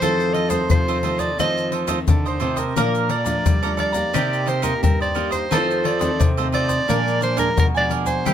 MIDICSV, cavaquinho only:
0, 0, Header, 1, 2, 480
1, 0, Start_track
1, 0, Key_signature, -2, "major"
1, 0, Tempo, 687049
1, 16, Time_signature, 4, 2, 24, 8
1, 5824, End_track
2, 0, Start_track
2, 0, Title_t, "Cavaquinho"
2, 0, Program_c, 0, 24
2, 10, Note_on_c, 0, 65, 66
2, 16, Note_on_c, 0, 69, 65
2, 18, Note_on_c, 0, 72, 72
2, 23, Note_on_c, 0, 75, 77
2, 233, Note_off_c, 0, 65, 0
2, 234, Note_off_c, 0, 69, 0
2, 237, Note_off_c, 0, 72, 0
2, 241, Note_on_c, 0, 65, 41
2, 242, Note_on_c, 0, 69, 43
2, 244, Note_off_c, 0, 75, 0
2, 246, Note_on_c, 0, 72, 46
2, 252, Note_on_c, 0, 75, 43
2, 341, Note_off_c, 0, 75, 0
2, 347, Note_off_c, 0, 72, 0
2, 349, Note_on_c, 0, 75, 48
2, 351, Note_off_c, 0, 69, 0
2, 355, Note_on_c, 0, 72, 46
2, 359, Note_off_c, 0, 65, 0
2, 360, Note_on_c, 0, 69, 40
2, 593, Note_off_c, 0, 75, 0
2, 596, Note_off_c, 0, 72, 0
2, 598, Note_off_c, 0, 69, 0
2, 616, Note_on_c, 0, 65, 70
2, 618, Note_on_c, 0, 69, 73
2, 621, Note_on_c, 0, 72, 69
2, 625, Note_on_c, 0, 75, 69
2, 679, Note_off_c, 0, 65, 0
2, 680, Note_off_c, 0, 69, 0
2, 681, Note_off_c, 0, 72, 0
2, 683, Note_off_c, 0, 75, 0
2, 722, Note_on_c, 0, 65, 57
2, 725, Note_on_c, 0, 69, 58
2, 730, Note_on_c, 0, 72, 67
2, 732, Note_on_c, 0, 75, 67
2, 821, Note_off_c, 0, 75, 0
2, 827, Note_off_c, 0, 72, 0
2, 830, Note_on_c, 0, 75, 53
2, 831, Note_off_c, 0, 69, 0
2, 835, Note_on_c, 0, 72, 43
2, 839, Note_off_c, 0, 65, 0
2, 839, Note_on_c, 0, 69, 39
2, 953, Note_off_c, 0, 75, 0
2, 956, Note_off_c, 0, 72, 0
2, 958, Note_off_c, 0, 69, 0
2, 969, Note_on_c, 0, 65, 63
2, 973, Note_on_c, 0, 69, 70
2, 975, Note_on_c, 0, 72, 73
2, 979, Note_on_c, 0, 75, 76
2, 1193, Note_off_c, 0, 65, 0
2, 1198, Note_off_c, 0, 69, 0
2, 1201, Note_off_c, 0, 72, 0
2, 1202, Note_on_c, 0, 65, 45
2, 1206, Note_off_c, 0, 75, 0
2, 1206, Note_on_c, 0, 69, 51
2, 1210, Note_on_c, 0, 72, 49
2, 1214, Note_on_c, 0, 75, 55
2, 1300, Note_off_c, 0, 65, 0
2, 1304, Note_off_c, 0, 69, 0
2, 1305, Note_off_c, 0, 72, 0
2, 1308, Note_off_c, 0, 75, 0
2, 1308, Note_on_c, 0, 65, 67
2, 1312, Note_on_c, 0, 69, 65
2, 1313, Note_on_c, 0, 72, 74
2, 1317, Note_on_c, 0, 75, 67
2, 1385, Note_off_c, 0, 65, 0
2, 1387, Note_off_c, 0, 69, 0
2, 1387, Note_off_c, 0, 72, 0
2, 1389, Note_off_c, 0, 75, 0
2, 1575, Note_on_c, 0, 75, 41
2, 1579, Note_on_c, 0, 72, 37
2, 1584, Note_on_c, 0, 69, 36
2, 1670, Note_off_c, 0, 69, 0
2, 1674, Note_off_c, 0, 72, 0
2, 1674, Note_on_c, 0, 65, 62
2, 1679, Note_off_c, 0, 75, 0
2, 1679, Note_on_c, 0, 69, 64
2, 1683, Note_on_c, 0, 72, 67
2, 1687, Note_on_c, 0, 75, 70
2, 1780, Note_off_c, 0, 75, 0
2, 1784, Note_off_c, 0, 72, 0
2, 1789, Note_on_c, 0, 75, 43
2, 1792, Note_off_c, 0, 69, 0
2, 1792, Note_on_c, 0, 72, 38
2, 1796, Note_off_c, 0, 65, 0
2, 1801, Note_on_c, 0, 69, 38
2, 1913, Note_off_c, 0, 75, 0
2, 1914, Note_off_c, 0, 72, 0
2, 1919, Note_off_c, 0, 69, 0
2, 1931, Note_on_c, 0, 74, 64
2, 1936, Note_on_c, 0, 77, 73
2, 1936, Note_on_c, 0, 82, 73
2, 2155, Note_off_c, 0, 74, 0
2, 2159, Note_off_c, 0, 77, 0
2, 2159, Note_on_c, 0, 69, 37
2, 2161, Note_off_c, 0, 82, 0
2, 2164, Note_on_c, 0, 74, 41
2, 2167, Note_on_c, 0, 77, 44
2, 2169, Note_on_c, 0, 82, 45
2, 2260, Note_off_c, 0, 82, 0
2, 2265, Note_off_c, 0, 77, 0
2, 2268, Note_on_c, 0, 82, 47
2, 2271, Note_off_c, 0, 74, 0
2, 2274, Note_on_c, 0, 77, 40
2, 2278, Note_off_c, 0, 69, 0
2, 2279, Note_on_c, 0, 74, 36
2, 2513, Note_off_c, 0, 82, 0
2, 2515, Note_off_c, 0, 77, 0
2, 2518, Note_off_c, 0, 74, 0
2, 2533, Note_on_c, 0, 69, 65
2, 2534, Note_on_c, 0, 74, 73
2, 2536, Note_on_c, 0, 77, 80
2, 2539, Note_on_c, 0, 82, 74
2, 2597, Note_off_c, 0, 69, 0
2, 2598, Note_off_c, 0, 74, 0
2, 2599, Note_off_c, 0, 77, 0
2, 2600, Note_off_c, 0, 82, 0
2, 2635, Note_on_c, 0, 69, 60
2, 2637, Note_on_c, 0, 74, 59
2, 2642, Note_on_c, 0, 77, 65
2, 2646, Note_on_c, 0, 82, 65
2, 2735, Note_off_c, 0, 82, 0
2, 2740, Note_off_c, 0, 77, 0
2, 2743, Note_on_c, 0, 82, 52
2, 2746, Note_off_c, 0, 74, 0
2, 2748, Note_on_c, 0, 77, 41
2, 2755, Note_on_c, 0, 74, 37
2, 2756, Note_off_c, 0, 69, 0
2, 2870, Note_off_c, 0, 82, 0
2, 2872, Note_off_c, 0, 77, 0
2, 2876, Note_off_c, 0, 74, 0
2, 2888, Note_on_c, 0, 63, 70
2, 2893, Note_on_c, 0, 70, 62
2, 2895, Note_on_c, 0, 72, 81
2, 3105, Note_off_c, 0, 63, 0
2, 3108, Note_off_c, 0, 70, 0
2, 3112, Note_off_c, 0, 72, 0
2, 3113, Note_on_c, 0, 63, 45
2, 3116, Note_on_c, 0, 70, 44
2, 3120, Note_on_c, 0, 72, 51
2, 3125, Note_on_c, 0, 75, 49
2, 3220, Note_off_c, 0, 63, 0
2, 3222, Note_off_c, 0, 70, 0
2, 3225, Note_off_c, 0, 72, 0
2, 3226, Note_off_c, 0, 75, 0
2, 3229, Note_on_c, 0, 63, 70
2, 3230, Note_on_c, 0, 70, 63
2, 3234, Note_on_c, 0, 72, 75
2, 3235, Note_on_c, 0, 75, 72
2, 3305, Note_off_c, 0, 63, 0
2, 3306, Note_off_c, 0, 70, 0
2, 3308, Note_off_c, 0, 72, 0
2, 3308, Note_off_c, 0, 75, 0
2, 3496, Note_on_c, 0, 75, 45
2, 3502, Note_on_c, 0, 72, 41
2, 3509, Note_on_c, 0, 70, 36
2, 3590, Note_off_c, 0, 70, 0
2, 3595, Note_off_c, 0, 72, 0
2, 3595, Note_on_c, 0, 63, 64
2, 3596, Note_off_c, 0, 75, 0
2, 3599, Note_on_c, 0, 70, 73
2, 3603, Note_on_c, 0, 72, 71
2, 3604, Note_on_c, 0, 75, 67
2, 3699, Note_off_c, 0, 75, 0
2, 3705, Note_off_c, 0, 72, 0
2, 3707, Note_on_c, 0, 75, 44
2, 3709, Note_off_c, 0, 70, 0
2, 3713, Note_on_c, 0, 72, 44
2, 3716, Note_off_c, 0, 63, 0
2, 3717, Note_on_c, 0, 70, 37
2, 3832, Note_off_c, 0, 75, 0
2, 3835, Note_off_c, 0, 72, 0
2, 3837, Note_off_c, 0, 70, 0
2, 3847, Note_on_c, 0, 65, 72
2, 3853, Note_on_c, 0, 69, 77
2, 3855, Note_on_c, 0, 72, 70
2, 3859, Note_on_c, 0, 75, 78
2, 4070, Note_off_c, 0, 65, 0
2, 4074, Note_off_c, 0, 69, 0
2, 4078, Note_off_c, 0, 72, 0
2, 4078, Note_on_c, 0, 65, 37
2, 4080, Note_off_c, 0, 75, 0
2, 4082, Note_on_c, 0, 69, 40
2, 4086, Note_on_c, 0, 72, 47
2, 4089, Note_on_c, 0, 75, 49
2, 4178, Note_off_c, 0, 75, 0
2, 4181, Note_off_c, 0, 72, 0
2, 4187, Note_on_c, 0, 75, 49
2, 4189, Note_on_c, 0, 72, 47
2, 4190, Note_off_c, 0, 69, 0
2, 4198, Note_off_c, 0, 65, 0
2, 4198, Note_on_c, 0, 69, 37
2, 4432, Note_off_c, 0, 75, 0
2, 4433, Note_off_c, 0, 72, 0
2, 4438, Note_off_c, 0, 69, 0
2, 4453, Note_on_c, 0, 65, 81
2, 4455, Note_on_c, 0, 69, 68
2, 4458, Note_on_c, 0, 72, 81
2, 4462, Note_on_c, 0, 75, 80
2, 4517, Note_off_c, 0, 65, 0
2, 4518, Note_off_c, 0, 69, 0
2, 4520, Note_off_c, 0, 72, 0
2, 4522, Note_off_c, 0, 75, 0
2, 4558, Note_on_c, 0, 65, 60
2, 4564, Note_on_c, 0, 69, 61
2, 4567, Note_on_c, 0, 72, 62
2, 4572, Note_on_c, 0, 75, 74
2, 4658, Note_off_c, 0, 75, 0
2, 4663, Note_off_c, 0, 72, 0
2, 4666, Note_on_c, 0, 75, 45
2, 4669, Note_off_c, 0, 69, 0
2, 4672, Note_on_c, 0, 72, 46
2, 4677, Note_off_c, 0, 65, 0
2, 4678, Note_on_c, 0, 69, 41
2, 4792, Note_off_c, 0, 75, 0
2, 4794, Note_off_c, 0, 72, 0
2, 4797, Note_off_c, 0, 69, 0
2, 4806, Note_on_c, 0, 62, 70
2, 4810, Note_on_c, 0, 70, 68
2, 4815, Note_on_c, 0, 74, 72
2, 4818, Note_on_c, 0, 80, 74
2, 5026, Note_off_c, 0, 62, 0
2, 5029, Note_off_c, 0, 70, 0
2, 5032, Note_off_c, 0, 74, 0
2, 5035, Note_off_c, 0, 80, 0
2, 5035, Note_on_c, 0, 62, 50
2, 5037, Note_on_c, 0, 70, 48
2, 5040, Note_on_c, 0, 74, 45
2, 5044, Note_on_c, 0, 80, 49
2, 5138, Note_off_c, 0, 62, 0
2, 5140, Note_off_c, 0, 70, 0
2, 5142, Note_off_c, 0, 74, 0
2, 5146, Note_on_c, 0, 62, 70
2, 5147, Note_off_c, 0, 80, 0
2, 5149, Note_on_c, 0, 70, 69
2, 5151, Note_on_c, 0, 74, 67
2, 5155, Note_on_c, 0, 80, 82
2, 5224, Note_off_c, 0, 62, 0
2, 5225, Note_off_c, 0, 70, 0
2, 5226, Note_off_c, 0, 74, 0
2, 5228, Note_off_c, 0, 80, 0
2, 5411, Note_on_c, 0, 80, 44
2, 5419, Note_on_c, 0, 74, 44
2, 5425, Note_on_c, 0, 70, 38
2, 5515, Note_off_c, 0, 70, 0
2, 5517, Note_on_c, 0, 62, 61
2, 5521, Note_off_c, 0, 74, 0
2, 5523, Note_off_c, 0, 80, 0
2, 5524, Note_on_c, 0, 70, 67
2, 5529, Note_on_c, 0, 74, 80
2, 5531, Note_on_c, 0, 80, 70
2, 5621, Note_off_c, 0, 80, 0
2, 5626, Note_off_c, 0, 74, 0
2, 5629, Note_on_c, 0, 80, 46
2, 5631, Note_off_c, 0, 70, 0
2, 5635, Note_on_c, 0, 74, 40
2, 5637, Note_off_c, 0, 62, 0
2, 5639, Note_on_c, 0, 70, 36
2, 5753, Note_off_c, 0, 80, 0
2, 5756, Note_off_c, 0, 74, 0
2, 5758, Note_off_c, 0, 70, 0
2, 5767, Note_on_c, 0, 64, 70
2, 5773, Note_on_c, 0, 70, 63
2, 5775, Note_on_c, 0, 72, 74
2, 5779, Note_on_c, 0, 76, 68
2, 5824, Note_off_c, 0, 64, 0
2, 5824, Note_off_c, 0, 70, 0
2, 5824, Note_off_c, 0, 72, 0
2, 5824, Note_off_c, 0, 76, 0
2, 5824, End_track
0, 0, End_of_file